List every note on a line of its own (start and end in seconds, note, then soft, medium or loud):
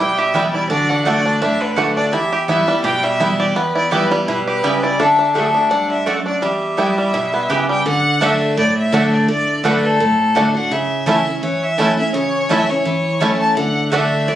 0.00 0.67 B2 medium
0.00 0.31 G3 medium
0.00 0.50 E4 medium
0.00 0.15 G4 medium
0.00 0.74 G4 medium
0.00 0.19 G5 medium
0.18 0.67 G4 medium
0.18 0.53 E5 medium
0.34 0.68 E3 medium
0.34 0.69 G3 medium
0.34 0.71 G3 medium
0.34 0.44 B3 medium
0.34 0.69 B3 medium
0.34 0.44 E4 medium
0.34 0.69 E4 medium
0.34 0.44 B4 loud
0.34 0.44 G5 loud
0.53 0.70 E4 medium
0.53 0.68 D5 medium
0.69 1.04 D3 medium
0.69 0.89 D4 medium
0.69 1.93 F#4 medium
0.69 0.90 D5 medium
0.89 1.24 D4 medium
0.89 1.04 F#5 loud
1.05 1.40 D3 medium
1.05 1.15 A3 medium
1.05 1.40 A3 medium
1.05 1.58 A3 medium
1.05 1.40 D4 medium
1.05 1.16 F#4 medium
1.05 1.41 F#4 medium
1.05 1.39 D5 medium
1.05 1.16 D5 medium
1.05 1.16 F#5 loud
1.26 1.41 D4 medium
1.41 2.10 A2 medium
1.41 1.93 D4 medium
1.41 1.62 E5 medium
1.61 2.10 D3 medium
1.61 1.96 B4 medium
1.76 2.11 D3 medium
1.76 1.87 A3 medium
1.76 2.12 A3 medium
1.76 2.13 A3 medium
1.76 2.12 D4 medium
1.76 1.87 F#4 medium
1.76 2.12 F#4 medium
1.76 1.87 D5 medium
1.76 1.87 F#5 medium
1.96 2.13 D4 medium
1.96 2.06 D5 medium
2.07 2.14 D5 medium
2.13 2.81 E2 medium
2.13 2.49 E4 medium
2.13 5.08 G4 loud
2.13 2.48 E5 medium
2.32 2.84 G4 medium
2.48 2.67 E3 medium
2.48 2.68 G3 medium
2.48 2.58 B3 medium
2.48 2.68 B3 medium
2.48 2.59 E4 medium
2.48 3.00 E4 medium
2.48 2.66 E4 medium
2.48 2.59 B4 medium
2.48 2.82 E5 medium
2.48 2.59 G5 loud
2.67 3.03 G3 medium
2.67 2.85 B3 soft
2.67 2.84 E4 medium
2.84 3.53 B2 medium
2.84 3.36 G4 medium
2.84 3.05 G5 medium
3.03 3.53 G3 medium
3.03 3.41 E5 loud
3.20 3.54 E3 medium
3.20 3.55 G3 medium
3.20 3.30 B3 medium
3.20 3.55 B3 medium
3.20 3.30 E4 medium
3.20 3.72 E4 medium
3.20 3.55 E4 medium
3.20 3.30 B4 medium
3.20 3.31 G5 loud
3.39 3.89 G4 medium
3.39 3.57 D5 medium
3.56 4.25 E2 medium
3.56 4.08 B3 medium
3.56 3.75 B4 medium
3.75 4.25 E4 medium
3.75 3.91 D5 medium
3.91 4.10 E3 medium
3.91 4.11 G3 medium
3.91 4.01 B3 medium
3.91 4.11 B3 medium
3.91 4.02 E4 medium
3.91 4.10 E4 medium
3.91 4.43 G4 medium
3.91 4.02 B4 loud
3.91 4.25 B4 medium
3.91 4.02 G5 medium
4.11 4.60 G3 medium
4.11 4.28 B3 soft
4.11 4.27 E4 medium
4.28 4.62 B2 medium
4.28 4.79 E4 medium
4.28 4.46 B4 medium
4.47 4.96 G4 medium
4.47 4.84 B4 medium
4.63 4.98 C#3 medium
4.63 5.00 G3 medium
4.63 4.73 B3 medium
4.63 4.73 E4 medium
4.63 4.74 B4 medium
4.63 4.74 G5 loud
4.83 4.99 E4 medium
4.83 5.01 D5 medium
4.99 5.34 D3 medium
4.99 5.17 D4 medium
4.99 5.34 A4 medium
4.99 5.34 E5 loud
5.19 5.53 D4 medium
5.34 5.54 D3 medium
5.34 5.44 A3 medium
5.34 5.87 A3 medium
5.34 5.54 A3 medium
5.34 5.54 D4 medium
5.34 5.45 F#4 medium
5.34 5.53 F#4 medium
5.34 6.39 A4 loud
5.34 5.45 D5 loud
5.34 5.71 E5 medium
5.34 5.45 F#5 medium
5.54 5.70 D4 medium
5.54 5.71 D4 soft
5.54 5.70 F#4 medium
5.70 6.05 G2 medium
5.70 6.22 D4 medium
5.70 5.89 F#5 medium
5.90 6.39 D3 medium
5.90 6.08 E5 medium
6.06 6.41 F#2 medium
6.06 6.16 A3 medium
6.06 6.42 A3 medium
6.06 6.16 F#4 medium
6.06 6.25 D5 medium
6.06 6.17 D5 medium
6.06 6.17 F#5 loud
6.26 6.42 D4 medium
6.26 6.41 D5 medium
6.42 7.11 E2 medium
6.42 6.94 G3 medium
6.42 6.77 G4 medium
6.42 7.65 E5 medium
6.77 7.12 E3 medium
6.77 7.12 G3 medium
6.77 6.88 B3 medium
6.77 7.13 B3 medium
6.77 6.88 E4 medium
6.77 7.13 E4 medium
6.77 7.15 G4 medium
6.77 6.88 B4 medium
6.77 6.88 G5 medium
6.98 7.47 G3 medium
7.13 7.48 B2 medium
7.13 7.32 E4 medium
7.13 7.66 E4 medium
7.33 7.83 B3 medium
7.33 7.38 E4 medium
7.49 7.84 C#3 medium
7.49 7.59 B3 medium
7.49 7.60 E4 medium
7.49 7.83 G4 medium
7.49 7.86 G4 medium
7.49 7.60 B4 loud
7.49 7.60 G5 medium
7.69 7.86 G3 medium
7.69 7.85 G5 medium
7.86 8.20 D3 medium
7.86 8.24 F#5 loud
8.20 8.55 D3 medium
8.20 8.31 A3 medium
8.20 8.56 A3 medium
8.20 8.30 A3 medium
8.20 8.24 D4 medium
8.20 8.56 D4 medium
8.20 8.31 F#4 loud
8.20 8.56 F#4 loud
8.20 8.31 D5 medium
8.20 8.58 E5 medium
8.20 8.31 F#5 loud
8.57 9.26 A2 medium
8.57 8.76 D5 medium
8.78 9.15 E5 loud
8.92 9.27 D3 medium
8.92 9.03 A3 medium
8.92 9.27 A3 medium
8.92 9.02 A3 medium
8.92 9.28 D4 medium
8.92 8.96 D4 medium
8.92 9.03 F#4 medium
8.92 9.28 F#4 medium
8.92 9.03 D5 medium
8.92 9.03 F#5 loud
9.13 9.29 D5 medium
9.28 9.62 D3 medium
9.28 9.62 D5 medium
9.63 9.98 D3 loud
9.63 9.74 A3 medium
9.63 9.99 A3 medium
9.63 9.73 A3 medium
9.63 9.99 D4 loud
9.63 9.67 D4 medium
9.63 9.74 F#4 medium
9.63 9.99 F#4 loud
9.63 9.86 B4 loud
9.63 9.74 D5 loud
9.63 9.74 F#5 loud
9.85 10.55 A4 loud
10.00 10.68 A2 medium
10.35 10.54 D3 medium
10.35 10.45 A3 medium
10.35 10.54 A3 medium
10.35 10.45 A3 medium
10.35 10.55 D4 medium
10.35 10.39 D4 medium
10.35 10.45 F#4 medium
10.35 10.53 F#4 medium
10.35 10.46 D5 loud
10.35 10.46 F#5 loud
10.54 10.72 D4 medium
10.54 10.71 F#4 medium
10.54 10.74 F#5 medium
10.71 11.40 C#3 medium
10.71 11.07 E5 loud
11.06 11.25 E3 medium
11.06 11.17 A3 medium
11.06 11.26 A3 medium
11.06 11.16 A3 medium
11.06 11.26 C#4 medium
11.06 11.16 C#4 medium
11.06 11.17 E4 medium
11.06 11.25 E4 loud
11.06 11.17 E4 medium
11.06 11.17 C#5 medium
11.06 11.41 E5 loud
11.06 11.17 A5 loud
11.26 11.43 C#4 medium
11.26 11.42 E4 medium
11.43 11.77 E3 medium
11.43 11.65 C#5 medium
11.63 11.98 E5 loud
11.78 11.97 E3 medium
11.78 11.88 A3 medium
11.78 11.97 A3 medium
11.78 11.88 A3 medium
11.78 11.98 C#4 medium
11.78 11.88 C#4 medium
11.78 11.88 E4 medium
11.78 11.96 E4 medium
11.78 11.88 E4 medium
11.78 11.88 C#5 loud
11.78 11.89 A5 loud
11.97 12.14 C#4 medium
11.97 12.13 E4 medium
11.97 12.14 E5 medium
12.14 12.82 C#3 medium
12.14 12.52 C#5 loud
12.49 12.68 E3 medium
12.49 12.59 A3 medium
12.49 12.69 A3 loud
12.49 12.59 A3 medium
12.49 12.69 C#4 loud
12.49 12.59 C#4 medium
12.49 12.60 E4 loud
12.49 12.68 E4 medium
12.49 12.59 E4 medium
12.49 12.60 C#5 medium
12.49 12.71 E5 loud
12.49 12.60 A5 loud
12.69 12.86 C#4 medium
12.69 12.85 E4 medium
12.69 13.40 C#5 loud
12.85 13.19 E3 medium
13.20 13.55 E3 medium
13.20 13.31 A3 medium
13.20 13.55 A3 medium
13.20 13.30 A3 medium
13.20 13.56 C#4 medium
13.20 13.30 C#4 medium
13.20 13.31 E4 medium
13.20 13.56 E4 medium
13.20 13.30 E4 medium
13.20 13.31 C#5 loud
13.20 13.31 A5 medium
13.40 13.56 A5 loud
13.57 13.90 D3 medium
13.57 13.90 F#5 loud
13.92 14.26 D3 medium
13.92 14.02 A3 medium
13.92 14.27 A3 medium
13.92 14.02 A3 medium
13.92 14.27 D4 medium
13.92 13.96 D4 medium
13.92 14.02 F#4 medium
13.92 14.27 F#4 loud
13.92 14.02 D5 medium
13.92 14.30 E5 loud
13.92 14.02 F#5 loud
14.28 14.35 A2 medium
14.28 14.35 D5 medium